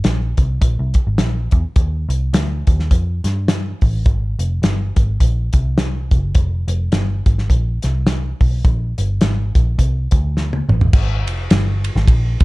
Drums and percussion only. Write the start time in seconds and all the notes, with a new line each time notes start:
0.04 snare, closed hi-hat
0.37 kick, closed hi-hat
0.62 kick, closed hi-hat
0.94 kick, closed hi-hat
1.18 snare, closed hi-hat
1.51 kick, closed hi-hat
1.76 kick, closed hi-hat
2.10 closed hi-hat
2.34 snare, closed hi-hat
2.67 kick, closed hi-hat
2.79 snare
2.91 kick, closed hi-hat
3.24 snare, closed hi-hat
3.48 snare, closed hi-hat
3.81 kick, open hi-hat
4.06 kick, closed hi-hat
4.39 closed hi-hat
4.63 snare, closed hi-hat
4.96 kick, closed hi-hat
5.20 kick, closed hi-hat
5.53 kick, closed hi-hat
5.78 snare, closed hi-hat
6.11 kick, closed hi-hat
6.35 kick, closed hi-hat
6.68 closed hi-hat
6.92 snare, closed hi-hat
7.26 kick, closed hi-hat
7.38 snare
7.50 kick, closed hi-hat
7.82 snare, closed hi-hat
8.07 snare, closed hi-hat
8.41 kick, open hi-hat
8.65 kick, closed hi-hat
8.98 closed hi-hat
9.21 snare, closed hi-hat
9.55 kick, closed hi-hat
9.79 kick, closed hi-hat
10.11 kick, closed hi-hat
10.37 snare
10.53 high tom
10.69 mid tom
10.81 floor tom
10.93 kick, crash
11.27 ride
11.50 snare, ride
11.84 ride
11.96 snare
12.08 kick, ride
12.40 kick, ride